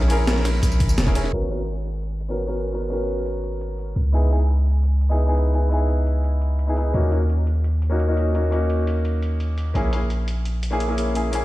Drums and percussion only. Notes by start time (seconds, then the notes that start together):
0.01 snare
0.10 closed hi-hat, ride
0.27 snare, closed hi-hat, tambourine
0.36 snare
0.45 snare, closed hi-hat, ride
0.63 closed hi-hat, tambourine
0.72 tambourine
0.80 kick, closed hi-hat, ride
0.89 tambourine
0.98 snare, closed hi-hat, tambourine
1.07 kick, snare, tambourine
1.15 closed hi-hat, ride
1.24 snare
1.33 closed hi-hat
1.50 closed hi-hat
1.68 closed hi-hat
1.85 closed hi-hat
2.03 closed hi-hat
2.21 closed hi-hat
2.38 closed hi-hat
2.56 closed hi-hat
2.73 closed hi-hat
2.91 closed hi-hat
3.08 closed hi-hat
3.26 closed hi-hat
3.44 closed hi-hat
3.61 closed hi-hat
3.79 closed hi-hat
3.96 closed hi-hat
4.14 closed hi-hat
4.31 closed hi-hat
4.49 closed hi-hat
4.66 closed hi-hat
4.84 closed hi-hat
5.01 closed hi-hat
5.19 closed hi-hat
5.36 closed hi-hat
5.54 closed hi-hat
5.71 closed hi-hat
5.89 closed hi-hat
6.07 closed hi-hat
6.24 closed hi-hat
6.42 closed hi-hat
6.59 closed hi-hat
6.77 closed hi-hat
6.94 closed hi-hat
7.12 closed hi-hat
7.29 closed hi-hat
7.47 closed hi-hat
7.64 closed hi-hat
7.82 closed hi-hat
7.99 closed hi-hat
8.17 closed hi-hat
8.35 closed hi-hat
8.52 closed hi-hat
8.70 closed hi-hat
8.87 closed hi-hat
9.05 closed hi-hat
9.22 closed hi-hat
9.40 closed hi-hat
9.58 closed hi-hat
9.75 closed hi-hat
9.93 closed hi-hat
10.10 closed hi-hat
10.28 closed hi-hat
10.45 closed hi-hat
10.63 closed hi-hat
10.80 closed hi-hat
10.98 closed hi-hat
11.15 closed hi-hat
11.33 closed hi-hat